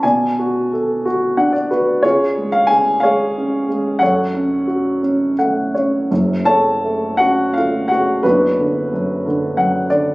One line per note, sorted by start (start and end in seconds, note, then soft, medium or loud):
0.03 2.00 B2 medium
0.03 1.51 D5 soft
0.03 1.66 G#5 medium
0.39 1.04 F#4 soft
0.72 2.00 A4 soft
1.05 1.69 F#4 medium
1.37 2.01 D4 medium
1.37 1.53 F#5 medium
1.53 1.68 D5 medium
1.70 2.03 F#4 soft
1.70 2.01 B4 medium
2.03 2.69 C#3 medium
2.03 2.99 F4 medium
2.03 2.99 G#4 medium
2.03 2.49 C#5 medium
2.37 3.02 G#3 medium
2.52 2.70 F5 medium
2.67 3.97 C#3 medium
2.67 2.99 G#5 medium
3.00 3.67 G#3 medium
3.00 3.97 G#4 medium
3.00 3.97 C#5 medium
3.00 4.02 F5 medium
3.37 3.99 C#4 medium
3.68 4.00 G#3 soft
3.99 6.07 F#2 medium
3.99 5.35 A4 medium
3.99 5.35 C#5 medium
3.99 5.33 F#5 medium
4.33 5.01 C#4 soft
4.67 6.06 F#4 soft
5.02 5.73 C#4 soft
5.38 6.08 A3 soft
5.38 5.72 F#5 soft
5.75 6.10 C#4 soft
5.75 6.08 C#5 soft
6.11 8.20 F#1 medium
6.11 8.20 F#2 medium
6.45 7.86 C#3 soft
6.45 7.15 A4 medium
6.45 7.15 C#5 medium
6.45 7.21 A5 loud
6.84 7.55 A3 soft
7.17 8.21 C#4 medium
7.17 7.53 F#4 medium
7.17 7.51 F#5 medium
7.54 8.23 A3 soft
7.54 7.88 F4 medium
7.54 7.90 F5 medium
7.88 8.23 C#3 soft
7.88 8.22 F#4 medium
7.88 8.20 F#5 medium
8.23 10.14 F#1 medium
8.23 8.92 F#2 medium
8.23 9.86 B3 medium
8.23 9.87 D4 medium
8.23 9.87 F#4 medium
8.23 9.85 B4 medium
8.58 9.24 D3 soft
8.93 9.56 F#2 medium
9.26 9.89 D3 medium
9.57 10.14 F#2 medium
9.57 9.87 F#5 medium
9.90 10.14 D3 soft
9.90 10.14 D5 medium